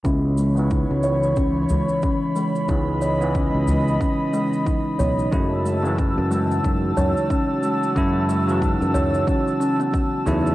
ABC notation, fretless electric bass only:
X:1
M:4/4
L:1/16
Q:"Swing 16ths" 1/4=91
K:C#m
V:1 name="Fretless electric bass" clef=bass
C,,4- C,, C,,3 C,,2 C,, z4 z | C,,4- C,, C,,3 z6 B,,,2 | F,,4- F,, F,,3 F,,2 F,, z4 z | F,,4- F,, F,,3 z6 E,,2 |]